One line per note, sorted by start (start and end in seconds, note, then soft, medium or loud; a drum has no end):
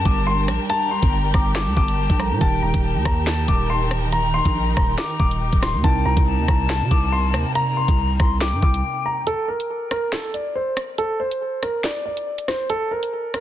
0.00 2.15 G3 medium
0.00 2.37 G3 medium
0.00 2.15 D4 medium
0.00 2.37 D4 medium
0.00 2.16 G4 medium
0.00 5.80 G4 medium
0.00 2.17 A#4 medium
0.00 2.37 A#4 medium
0.00 0.66 A5 loud
0.05 0.50 G1 loud
0.05 0.25 D6 medium
0.05 kick loud
0.05 closed hi-hat medium
0.27 0.47 C6 medium
0.48 0.59 A#1 loud
0.48 cross-stick loud
0.48 closed hi-hat medium
0.70 0.90 A5 loud
0.70 1.30 A#5 medium
0.70 closed hi-hat medium
0.91 1.31 C6 medium
1.03 1.33 G1 loud
1.03 kick medium
1.03 closed hi-hat medium
1.34 1.68 G1 loud
1.34 1.54 A#5 medium
1.34 1.54 D6 medium
1.34 kick loud
1.34 cross-stick loud
1.34 closed hi-hat medium
1.55 2.37 A5 medium
1.55 1.75 D6 medium
1.55 snare loud
1.55 clap medium
1.55 closed hi-hat medium
1.67 1.76 D2 loud
1.77 2.08 G1 loud
1.77 2.17 D6 medium
1.77 kick loud
1.88 closed hi-hat medium
2.10 2.33 A#1 loud
2.10 kick loud
2.10 closed hi-hat medium
2.19 2.41 G3 soft
2.19 2.41 D4 soft
2.19 2.41 A4 soft
2.19 2.42 A#4 medium
2.19 2.40 A#5 medium
2.19 cross-stick loud
2.19 closed hi-hat loud
2.31 2.41 A#2 loud
2.39 2.62 D#1 loud
2.39 5.79 D#3 medium
2.39 5.81 D#3 medium
2.39 5.80 D#4 medium
2.39 9.23 D#4 medium
2.39 5.80 G4 medium
2.39 5.81 A#4 medium
2.39 2.81 G5 medium
2.39 2.61 A5 loud
2.39 kick loud
2.39 closed hi-hat medium
2.62 2.73 D#1 loud
2.62 3.03 A#5 medium
2.74 2.97 D#1 loud
2.74 kick medium
2.74 closed hi-hat medium
2.84 4.09 A5 medium
2.95 3.05 D#2 loud
3.05 3.47 D#2 loud
3.05 3.26 A#5 medium
3.05 kick loud
3.05 cross-stick loud
3.05 closed hi-hat medium
3.27 3.47 A5 medium
3.27 snare loud
3.27 clap medium
3.27 closed hi-hat medium
3.48 4.41 D#1 loud
3.48 3.68 D6 medium
3.48 kick loud
3.48 closed hi-hat medium
3.70 3.90 C6 medium
3.91 cross-stick loud
3.91 closed hi-hat medium
4.12 4.33 A#5 loud
4.12 4.73 A#5 loud
4.12 closed hi-hat medium
4.34 4.74 C6 medium
4.45 4.76 A#1 loud
4.45 kick medium
4.45 closed hi-hat medium
4.77 4.97 D#1 loud
4.77 4.97 A#5 medium
4.77 4.97 C6 medium
4.77 kick loud
4.77 cross-stick loud
4.77 closed hi-hat medium
4.98 5.39 A#5 medium
4.98 5.18 D6 medium
4.98 snare loud
4.98 clap medium
4.98 closed hi-hat medium
5.20 5.51 D#1 loud
5.20 5.60 D6 medium
5.20 kick loud
5.31 closed hi-hat medium
5.53 5.75 D1 loud
5.53 kick loud
5.53 closed hi-hat medium
5.62 5.83 C6 medium
5.62 cross-stick loud
5.62 snare medium
5.62 closed hi-hat medium
5.74 5.83 D#2 loud
5.82 6.05 C2 loud
5.82 9.22 C3 medium
5.82 9.23 C3 medium
5.82 9.23 G3 medium
5.82 9.23 A#3 medium
5.82 9.22 C4 medium
5.82 9.23 D#4 medium
5.82 9.24 A#4 medium
5.82 6.24 G5 medium
5.82 6.04 A5 loud
5.82 kick loud
5.82 closed hi-hat medium
6.05 6.16 C2 loud
6.05 6.46 A#5 loud
6.17 6.40 C2 loud
6.17 kick medium
6.17 closed hi-hat medium
6.27 7.51 A5 loud
6.38 6.48 D#2 loud
6.48 6.83 C2 loud
6.48 6.68 A#5 medium
6.48 kick medium
6.48 cross-stick loud
6.48 closed hi-hat medium
6.70 6.90 A5 medium
6.70 snare loud
6.70 clap medium
6.70 closed hi-hat medium
6.81 6.91 C3 loud
6.91 7.35 C2 loud
6.91 7.11 D6 medium
6.91 kick loud
6.91 closed hi-hat medium
7.12 7.33 C6 medium
7.34 7.45 D#2 loud
7.34 cross-stick loud
7.34 closed hi-hat medium
7.55 7.75 A#5 loud
7.55 8.16 A#5 medium
7.55 closed hi-hat medium
7.77 8.17 C6 medium
7.88 8.19 C2 loud
7.88 kick medium
7.88 closed hi-hat medium
8.20 8.54 C2 loud
8.20 8.40 A#5 medium
8.20 8.40 C6 medium
8.20 kick loud
8.20 cross-stick loud
8.20 closed hi-hat medium
8.41 9.23 G5 medium
8.41 8.61 D6 medium
8.41 snare loud
8.41 clap medium
8.41 closed hi-hat medium
8.53 8.62 G2 loud
8.62 8.83 C2 loud
8.62 9.03 D6 medium
8.62 kick loud
8.74 closed hi-hat medium
9.06 9.26 A#5 medium
9.27 9.47 A4 loud
9.27 closed hi-hat medium
9.48 9.89 A#4 medium
9.60 closed hi-hat medium
9.91 10.11 A#4 medium
9.91 cross-stick loud
9.91 closed hi-hat medium
10.12 10.33 A4 medium
10.12 snare loud
10.12 clap medium
10.12 closed hi-hat medium
10.34 10.54 D5 medium
10.34 closed hi-hat medium
10.55 10.75 C5 medium
10.77 cross-stick loud
10.77 closed hi-hat medium
10.98 11.18 A4 loud
10.98 closed hi-hat medium
11.20 11.60 C5 medium
11.31 closed hi-hat medium
11.63 11.83 A#4 medium
11.63 cross-stick loud
11.63 closed hi-hat medium
11.84 12.04 D5 medium
11.84 snare loud
11.84 clap medium
11.84 closed hi-hat medium
12.05 12.46 D5 medium
12.17 closed hi-hat medium
12.38 closed hi-hat medium
12.48 12.68 C5 medium
12.48 cross-stick loud
12.48 snare medium
12.48 closed hi-hat medium
12.70 12.90 A4 loud
12.70 closed hi-hat medium
12.91 13.31 A#4 medium
13.03 closed hi-hat medium
13.34 13.40 A#4 medium
13.34 cross-stick loud
13.34 closed hi-hat medium